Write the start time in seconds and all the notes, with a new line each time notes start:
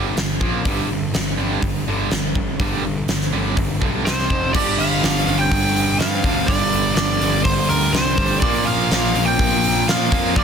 Already playing: G1 G2 D3 G3
0.17 G1 G2 D3, snare, open hi-hat
0.41 A#1 A#2 F3 A#3, kick
0.65 G1 G2 D3 G3, kick, open hi-hat
0.89 G1 G2 D3
1.14 G1 G2 D3, snare, open hi-hat
1.38 G2 D3 G3
1.62 G1 G2 D3, kick, open hi-hat
1.87 G1 G2 D3 G3
2.11 G1 G2 D3, snare, open hi-hat
2.35 G1 G2 D3, kick
2.59 G1 G2 D3 G3, kick, open hi-hat
2.85 G2 D3
3.08 G1 G2 D3, snare, open hi-hat
3.21 snare
3.33 G1 G2 D3 G3
3.57 G1 G2 D3, kick, open hi-hat
3.82 B1 G2 D3 G3, kick
4.05 C2 C3 G3 C4 C5 C6, snare, open hi-hat
4.19 snare
4.30 F1 F2 C3 F3, kick
4.53 G1 G2 D3 G3 D5 D6, kick, crash
4.57 G3
4.78 G1 F5 F6, open hi-hat
5.02 G1, snare, open hi-hat
5.26 G1 D3 G3, open hi-hat
5.31 G2
5.39 G5 G6
5.51 G1, kick, open hi-hat
5.76 open hi-hat
5.99 G2 D3 G3 F5 F6, snare, open hi-hat
6.24 D2 G2 D3 G3, kick, open hi-hat
6.46 G1 G2 D3 D5 D6, kick, open hi-hat
6.51 G3
6.72 G1, open hi-hat
6.95 G1 D5 D6, snare, open hi-hat
7.20 G1 G2 D3 G3, open hi-hat
7.44 G1 C5 C6, kick, open hi-hat
7.69 D2 A#4 A#5, open hi-hat
7.92 C2 G2 D3 G3 C5 C6, snare, open hi-hat
8.18 G1 G2 D3 G3, kick, open hi-hat
8.40 A#1 A#2 F3 A#3 D5 D6, kick, open hi-hat
8.44 A#3
8.65 A#1 F5 F6, open hi-hat
8.91 A#1, snare, open hi-hat
9.14 A#1 A#2 F3 A#3, open hi-hat
9.26 G5 G6
9.39 A#1, kick, open hi-hat
9.64 open hi-hat
9.87 A#2 F3 A#3 F5 F6, snare, open hi-hat
10.11 F2 A#2 F3 A#3, kick, open hi-hat
10.36 A#1 A#2 F3 A#3 D5 D6, kick, open hi-hat